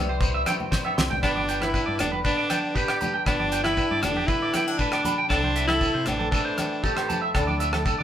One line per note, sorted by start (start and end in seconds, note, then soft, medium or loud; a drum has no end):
0.00 0.43 C2 medium
0.00 1.20 E3 medium
0.00 0.72 G3 medium
0.00 0.47 C4 medium
0.09 0.16 C5 medium
0.21 1.23 E4 medium
0.21 0.29 C5 medium
0.21 kick medium
0.21 shekere medium
0.34 0.42 E5 medium
0.46 1.20 G2 medium
0.46 0.97 C4 medium
0.46 0.54 G5 medium
0.46 cross-stick medium
0.46 closed hi-hat medium
0.46 high conga medium
0.46 low agogo medium
0.46 shekere medium
0.60 low conga medium
0.71 1.23 G3 medium
0.71 0.79 C5 medium
0.71 kick medium
0.71 snare soft
0.71 shekere medium
0.85 0.92 E5 medium
0.85 high conga soft
0.85 low agogo medium
0.98 1.20 C2 medium
0.98 1.20 C4 medium
0.98 1.05 C6 medium
0.98 snare medium
0.98 low conga medium
0.98 shekere medium
1.10 1.18 G5 medium
1.10 floor tom medium
1.10 low conga medium
1.23 1.77 G1 medium
1.23 2.76 G2 medium
1.23 2.25 B3 medium
1.23 1.64 D4 medium
1.23 1.49 G4 medium
1.23 1.30 B4 medium
1.23 muted steel-string acoustic guitar stroke medium
1.23 kick medium
1.23 cross-stick medium
1.23 low agogo medium
1.23 shekere medium
1.36 1.43 D5 medium
1.36 high conga medium
1.48 3.28 G4 medium
1.48 1.56 G5 medium
1.48 closed hi-hat soft
1.48 shekere medium
1.61 1.99 E4 medium
1.61 1.68 B4 medium
1.61 cross-stick medium
1.61 high conga medium
1.61 low agogo medium
1.61 shekere soft
1.74 2.50 D4 medium
1.74 1.81 B4 medium
1.74 kick medium
1.74 shekere medium
1.86 1.98 G2 medium
1.86 1.93 D5 medium
1.99 2.22 E1 medium
1.99 4.03 D3 medium
1.99 2.11 D4 medium
1.99 cross-stick medium
1.99 closed hi-hat soft
1.99 low conga medium
1.99 low agogo medium
1.99 shekere medium
2.12 2.19 B4 medium
2.12 high conga medium
2.24 2.75 B3 medium
2.24 2.77 D4 loud
2.24 2.32 B4 medium
2.24 kick medium
2.24 shekere medium
2.37 2.44 D5 medium
2.37 shekere soft
2.50 3.01 D4 medium
2.50 2.57 G5 medium
2.50 cross-stick medium
2.50 closed hi-hat soft
2.50 high conga medium
2.50 low agogo medium
2.50 shekere medium
2.64 shekere soft
2.75 3.24 B3 medium
2.75 3.14 G4 medium
2.75 2.83 B4 medium
2.75 kick medium
2.75 shekere medium
2.88 2.96 D5 medium
2.88 cross-stick medium
2.88 low agogo medium
2.88 shekere soft
3.01 3.24 D4 medium
3.01 muted clean electric guitar stroke medium
3.01 closed hi-hat soft
3.01 high conga medium
3.01 low conga medium
3.01 shekere medium
3.14 3.21 G5 medium
3.26 3.81 G1 medium
3.26 5.28 G2 medium
3.26 4.29 B3 medium
3.26 3.63 D4 medium
3.26 3.78 D4 medium
3.26 3.53 G4 medium
3.26 3.34 B4 medium
3.26 kick medium
3.26 cross-stick medium
3.26 low agogo medium
3.26 shekere medium
3.40 3.47 D5 medium
3.40 high conga medium
3.52 5.28 G4 medium
3.52 3.60 G5 medium
3.52 closed hi-hat soft
3.52 shekere medium
3.63 4.04 E4 medium
3.63 3.72 B4 medium
3.63 cross-stick medium
3.63 high conga medium
3.63 low agogo medium
3.63 shekere soft
3.77 4.55 D4 medium
3.77 3.85 B4 medium
3.77 kick medium
3.77 shekere medium
3.91 4.02 G2 medium
3.91 3.98 D5 medium
4.02 4.25 E1 medium
4.02 5.31 D3 medium
4.02 4.28 D4 medium
4.02 cross-stick medium
4.02 closed hi-hat soft
4.02 low conga medium
4.02 low agogo medium
4.02 shekere medium
4.16 4.24 G4 medium
4.16 high conga medium
4.27 4.54 B3 medium
4.27 4.80 E4 medium
4.27 4.36 B4 medium
4.27 kick medium
4.27 shekere medium
4.41 4.49 D5 medium
4.41 shekere soft
4.54 4.68 B3 medium
4.54 4.63 G5 medium
4.54 cross-stick medium
4.54 closed hi-hat soft
4.54 high conga medium
4.54 low agogo medium
4.54 shekere medium
4.66 5.31 D4 soft
4.66 shekere soft
4.78 5.06 A2 medium
4.78 5.18 D4 medium
4.78 4.88 B4 medium
4.78 kick medium
4.78 shekere medium
4.92 5.00 D5 medium
4.92 cross-stick medium
4.92 low agogo medium
4.92 shekere soft
5.05 5.31 B2 medium
5.05 5.13 B5 medium
5.05 closed hi-hat soft
5.05 high conga medium
5.05 low conga medium
5.05 shekere medium
5.18 5.25 G5 medium
5.29 5.85 C2 medium
5.29 5.65 D4 medium
5.29 5.38 A4 medium
5.29 kick medium
5.29 cross-stick medium
5.29 low agogo medium
5.29 shekere medium
5.33 6.08 C3 medium
5.33 5.82 C4 medium
5.33 5.57 E4 medium
5.33 muted steel-string acoustic guitar stroke medium
5.43 5.51 C5 medium
5.43 high conga medium
5.56 7.36 E4 medium
5.56 5.64 E5 medium
5.56 closed hi-hat soft
5.56 shekere medium
5.68 6.08 E4 medium
5.68 5.76 A4 medium
5.68 cross-stick medium
5.68 high conga medium
5.68 low agogo medium
5.68 shekere soft
5.81 6.59 C4 medium
5.81 5.89 A4 medium
5.81 kick medium
5.81 shekere medium
5.94 6.06 C3 medium
5.94 6.01 C5 medium
6.06 6.29 A1 medium
6.06 7.32 E3 medium
6.06 6.30 D4 medium
6.06 cross-stick medium
6.06 closed hi-hat soft
6.06 low conga medium
6.06 low agogo medium
6.06 shekere medium
6.19 6.27 A4 medium
6.19 high conga medium
6.31 6.84 A3 medium
6.31 6.85 D4 medium
6.31 6.40 A4 medium
6.31 kick medium
6.31 shekere medium
6.45 6.52 C5 medium
6.45 shekere soft
6.58 7.09 C4 medium
6.58 cross-stick medium
6.58 closed hi-hat soft
6.58 high conga medium
6.58 low agogo medium
6.58 shekere medium
6.71 shekere soft
6.84 7.32 G2 medium
6.84 7.33 A3 medium
6.84 7.22 G4 medium
6.84 6.91 A4 medium
6.84 kick medium
6.84 shekere medium
6.96 7.04 C5 medium
6.96 cross-stick medium
6.96 low agogo medium
6.96 shekere soft
7.09 7.33 C4 medium
7.09 7.17 A5 medium
7.09 closed hi-hat soft
7.09 high conga medium
7.09 low conga medium
7.09 shekere medium
7.22 7.29 E5 medium
7.34 7.89 D2 medium
7.34 8.03 D3 medium
7.34 7.71 D4 medium
7.34 8.03 D4 medium
7.34 7.61 E4 medium
7.34 7.42 A4 medium
7.34 kick medium
7.34 cross-stick medium
7.34 low agogo medium
7.34 shekere medium
7.47 7.55 D5 medium
7.47 high conga medium
7.60 7.87 E4 medium
7.60 7.68 E5 medium
7.60 closed hi-hat soft
7.60 shekere medium
7.73 7.80 A4 medium
7.73 cross-stick medium
7.73 high conga medium
7.73 low agogo medium
7.73 shekere soft
7.85 8.03 E4 medium
7.85 7.93 A4 medium
7.85 kick medium
7.85 shekere medium
7.98 8.03 D4 medium
7.98 8.03 D5 medium
7.98 shekere soft